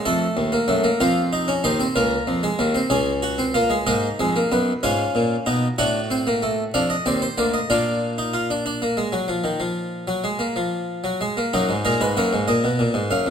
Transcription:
0.05 0.25 F2 medium
0.05 0.51 A3 medium
0.05 0.97 A4 medium
0.37 0.56 D#2 medium
0.52 0.68 A#3 medium
0.68 0.88 F#2 medium
0.68 0.84 A3 medium
0.84 0.99 A#3 medium
1.00 1.62 F2 medium
1.00 1.47 C4 medium
1.00 1.20 F4 medium
1.33 1.52 D#4 medium
1.48 1.63 C#4 medium
1.64 1.84 D#2 medium
1.64 1.79 D#4 medium
1.64 1.83 C5 medium
1.80 1.95 C4 medium
1.96 2.15 C#2 medium
1.96 2.41 A#3 medium
1.96 2.88 A#4 medium
2.27 2.47 F2 medium
2.43 2.58 G#3 medium
2.59 2.78 D#2 medium
2.59 2.74 A#3 medium
2.75 2.90 C4 medium
2.90 3.83 C#2 medium
2.90 3.37 C#4 medium
2.90 3.10 G#4 medium
3.23 3.42 F#4 medium
3.38 3.54 C4 medium
3.54 3.70 A#3 medium
3.54 3.74 F4 medium
3.70 3.85 G#3 medium
3.87 4.07 G#2 medium
3.87 4.07 A#3 medium
3.87 4.80 D#4 medium
3.87 4.80 D#5 medium
4.20 4.39 F2 medium
4.20 4.35 G#3 medium
4.36 4.51 A#3 medium
4.52 4.71 F#2 medium
4.52 4.71 B3 medium
4.83 5.03 G#2 medium
4.83 5.44 C#4 medium
4.83 5.75 F4 medium
4.83 5.75 G#5 medium
5.15 5.34 A#2 medium
5.46 5.66 B2 medium
5.46 5.66 D#4 medium
5.78 6.71 A2 medium
5.78 5.98 D4 medium
5.78 7.65 F#4 medium
5.78 6.71 F#5 medium
6.11 6.26 C4 medium
6.27 6.42 A#3 medium
6.43 6.62 A3 medium
6.74 6.94 F2 medium
6.74 6.94 D4 medium
6.74 6.89 F5 medium
6.90 7.05 D#5 medium
7.06 7.26 D#2 medium
7.06 7.25 C4 medium
7.06 7.21 D5 medium
7.22 7.37 C5 medium
7.38 7.58 D2 medium
7.38 7.57 A#3 medium
7.38 7.53 D5 medium
7.54 7.69 D#5 medium
7.70 11.17 A#2 medium
7.70 8.16 D4 medium
7.70 8.32 F4 medium
7.70 11.17 D5 medium
8.18 8.33 D#4 medium
8.34 8.49 F4 medium
8.50 8.65 D4 medium
8.66 8.81 D4 medium
8.82 8.97 A#3 medium
8.97 9.12 G#3 medium
9.12 9.28 F#3 medium
9.28 9.44 F3 medium
9.44 9.59 D#3 soft
9.60 10.06 F3 medium
10.08 10.23 F#3 medium
10.24 10.39 G#3 soft
10.39 10.55 A#3 soft
10.56 11.03 F3 medium
11.04 11.20 F#3 soft
11.21 11.36 G#3 medium
11.37 11.53 A#3 medium
11.53 11.69 F#2 medium
11.53 11.73 F#3 medium
11.53 13.30 D#4 medium
11.69 11.84 G#2 medium
11.85 12.00 A#2 medium
11.85 12.04 G#3 medium
11.85 12.00 A#4 medium
12.01 12.16 G#2 medium
12.01 12.16 B4 medium
12.17 12.32 F#2 medium
12.17 13.30 A#3 medium
12.17 12.37 C#5 medium
12.33 12.48 G#2 medium
12.48 12.63 A#2 medium
12.48 13.09 D#5 medium
12.64 12.79 B2 medium
12.79 12.95 A#2 medium
12.94 13.10 G#2 medium
13.11 13.26 F#2 medium
13.11 13.30 F5 medium
13.26 13.30 F2 medium

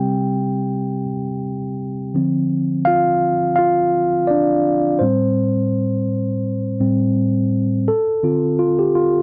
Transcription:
0.00 2.11 C3 medium
0.00 2.12 G3 soft
0.00 2.12 C4 medium
0.00 1.04 G4 medium
0.00 1.04 G5 medium
2.14 2.63 D3 medium
2.14 2.64 F3 soft
2.14 2.64 C4 medium
2.85 3.55 F4 medium
2.85 3.55 F5 loud
3.56 4.26 F4 medium
3.56 4.25 F5 loud
4.27 4.98 D4 medium
4.27 5.02 D5 medium
4.99 6.79 A2 medium
4.99 6.79 G3 medium
4.99 6.05 C4 medium
4.99 6.03 C5 medium
6.80 7.12 A2 soft
6.80 7.12 G3 soft
6.80 7.13 C4 medium
7.88 8.61 A4 medium
8.23 9.22 D3 soft
8.23 9.22 C4 soft
8.23 8.58 F4 medium
8.59 8.79 F4 medium
8.79 8.94 G4 medium
8.95 9.22 F4 medium

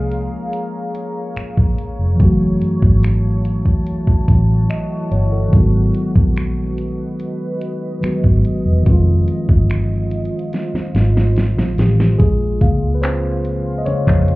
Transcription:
0.00 0.28 C2 medium
0.00 2.13 F3 medium
0.00 2.15 G#3 medium
0.00 2.16 A#3 medium
0.00 2.17 C#4 medium
0.00 2.16 G#4 medium
0.00 2.18 G#4 medium
0.00 5.49 C#5 medium
0.00 2.16 F5 medium
0.00 2.16 A#5 medium
0.12 closed hi-hat medium
0.53 closed hi-hat medium
0.95 closed hi-hat medium
1.36 finger snap loud
1.36 muted fingered electric bass stroke soft
1.36 closed hi-hat medium
1.57 1.76 A#1 medium
1.57 kick medium
1.78 closed hi-hat medium
1.99 2.18 F1 medium
2.15 4.64 E3 medium
2.15 4.65 F#3 medium
2.20 2.58 F#1 loud
2.20 4.66 A3 medium
2.20 4.67 C#4 medium
2.20 5.50 E4 medium
2.20 8.83 F#4 medium
2.20 5.50 A5 medium
2.20 kick loud
2.20 closed hi-hat medium
2.25 4.68 F#4 medium
2.62 closed hi-hat medium
2.82 3.62 G#1 medium
2.82 kick loud
3.03 finger snap loud
3.03 closed hi-hat medium
3.45 closed hi-hat medium
3.66 kick medium
3.87 closed hi-hat medium
4.07 muted fingered electric bass stroke soft
4.07 kick medium
4.28 4.66 A1 medium
4.28 kick medium
4.28 closed hi-hat medium
4.70 5.09 D#5 medium
4.70 finger snap loud
4.70 closed hi-hat medium
5.11 5.50 G1 medium
5.11 5.31 C#5 medium
5.11 closed hi-hat medium
5.32 5.72 A4 medium
5.48 7.97 D#3 medium
5.48 7.98 F#3 medium
5.53 5.91 G#1 loud
5.53 7.99 G#3 medium
5.53 8.00 B3 medium
5.53 8.83 B4 medium
5.53 12.16 D#5 medium
5.53 kick loud
5.53 closed hi-hat medium
5.58 8.01 F#4 medium
5.95 closed hi-hat medium
6.16 6.95 A#1 medium
6.16 kick loud
6.36 finger snap loud
6.36 closed hi-hat medium
6.78 closed hi-hat medium
7.20 closed hi-hat medium
7.61 closed hi-hat medium
8.01 8.81 D#3 medium
8.01 8.86 F#3 medium
8.01 8.85 G#3 medium
8.01 8.87 B3 medium
8.01 finger snap loud
8.01 muted fingered electric bass stroke soft
8.01 closed hi-hat medium
8.05 8.88 F#4 medium
8.24 8.43 G#1 medium
8.24 kick medium
8.45 closed hi-hat medium
8.65 8.85 E1 medium
8.82 11.72 D#3 medium
8.82 11.73 F3 medium
8.86 9.25 F1 loud
8.86 11.74 G#3 medium
8.86 11.75 C4 medium
8.86 12.16 F4 medium
8.86 12.16 C5 medium
8.86 kick loud
8.86 closed hi-hat medium
8.91 11.77 F4 medium
9.28 closed hi-hat medium
9.49 10.28 G1 medium
9.49 kick loud
9.70 finger snap loud
9.70 closed hi-hat medium
10.11 closed hi-hat medium
10.25 closed hi-hat medium
10.39 closed hi-hat soft
10.53 snare medium
10.53 closed hi-hat medium
10.74 muted fingered electric bass stroke soft
10.74 snare medium
10.95 11.53 G#1 medium
10.95 snare medium
10.95 closed hi-hat medium
11.17 snare medium
11.36 snare medium
11.36 closed hi-hat medium
11.57 11.76 A#1 medium
11.57 snare medium
11.76 12.16 A1 medium
11.76 12.19 D#3 medium
11.76 12.19 F3 medium
11.76 12.20 G#3 soft
11.76 12.21 C4 soft
11.76 snare medium
11.76 closed hi-hat medium
11.81 12.21 G4 medium
12.00 snare medium
12.18 12.58 A#1 loud
12.18 12.93 G#3 medium
12.18 14.36 F4 medium
12.18 12.98 G#4 medium
12.18 14.36 F5 medium
12.18 14.36 G#5 medium
12.18 kick loud
12.18 closed hi-hat medium
12.61 13.85 C#3 medium
12.61 14.36 A#3 soft
12.61 14.36 F5 medium
12.61 kick medium
12.61 closed hi-hat medium
12.82 13.82 C#2 medium
12.95 13.02 B4 medium
13.02 13.76 C4 medium
13.02 13.81 C5 loud
13.02 clap loud
13.02 closed hi-hat medium
13.45 closed hi-hat medium
13.78 13.86 D#5 medium
13.85 14.24 C#3 soft
13.85 14.24 G#3 soft
13.85 14.36 C#4 medium
13.85 14.24 C5 medium
13.85 14.36 C#5 loud
13.85 muted fingered electric bass stroke soft
13.85 closed hi-hat medium
14.07 14.36 F2 medium
14.07 kick medium
14.07 clap medium
14.28 closed hi-hat soft

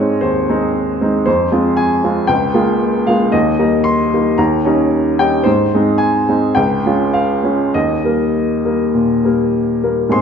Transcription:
0.00 1.30 G#2 soft
0.00 0.49 G#3 soft
0.00 0.49 C4 soft
0.00 0.50 D#4 soft
0.00 0.23 C#5 medium
0.00 1.29 D#5 medium
0.21 0.48 D#2 soft
0.21 1.24 C5 medium
0.49 0.97 G#3 soft
0.49 0.97 C4 soft
0.49 0.98 D#4 soft
1.01 1.25 G#3 soft
1.01 1.25 C4 soft
1.01 1.25 D#4 soft
1.26 1.52 F2 soft
1.26 1.78 C5 medium
1.52 2.00 G#3 soft
1.52 2.00 C4 soft
1.52 2.00 F4 soft
1.77 2.29 G#5 medium
2.04 2.28 G#3 soft
2.04 2.28 C4 soft
2.04 2.28 F4 soft
2.27 2.55 C#2 soft
2.27 3.06 G5 medium
2.54 3.03 G#3 soft
2.54 3.03 A#3 soft
2.54 3.03 F4 soft
3.07 3.31 G#3 soft
3.07 3.31 A#3 soft
3.07 3.32 F4 soft
3.07 3.33 F5 medium
3.32 3.59 D#2 soft
3.32 3.85 D#5 medium
3.59 4.09 G3 soft
3.59 4.08 A#3 soft
3.59 4.08 D#4 soft
3.84 4.38 C6 medium
4.14 4.37 G3 soft
4.14 4.37 A#3 soft
4.14 4.37 D#4 soft
4.38 4.64 D#2 soft
4.38 5.18 A#5 medium
4.65 5.15 G3 soft
4.65 5.15 C#4 soft
4.65 5.15 D#4 soft
5.19 5.44 G3 soft
5.19 5.44 C#4 soft
5.19 5.44 D#4 soft
5.19 5.46 G5 medium
5.44 5.72 G#2 soft
5.44 5.99 C5 medium
5.75 6.25 G#3 soft
5.75 6.25 C4 soft
5.75 6.25 D#4 soft
5.98 6.56 G#5 medium
6.29 6.54 G#3 soft
6.29 6.54 C4 soft
6.29 6.55 D#4 soft
6.55 6.85 C#2 soft
6.55 7.14 G5 medium
6.86 7.40 G#3 soft
6.86 7.41 C#4 soft
6.86 7.41 F4 soft
7.13 7.74 F5 medium
7.43 7.71 G#3 soft
7.43 7.72 C#4 soft
7.43 7.72 F4 soft
7.74 8.04 D#2 soft
7.74 9.53 D#5 medium
8.04 8.61 G3 soft
8.04 8.61 A#3 soft
8.04 8.61 A#4 soft
8.65 8.92 G3 soft
8.65 8.92 A#3 soft
8.65 8.92 A#4 soft
8.94 9.23 A#2 soft
9.24 9.79 G3 soft
9.24 9.79 A#3 soft
9.24 9.80 A#4 soft
9.83 10.10 G3 soft
9.83 10.10 A#3 soft
9.83 10.10 A#4 soft
10.09 10.21 G#2 soft
10.09 10.21 G#3 soft
10.09 10.21 C4 soft
10.09 10.21 G#4 soft
10.09 10.21 C5 soft
10.09 10.21 C6 medium

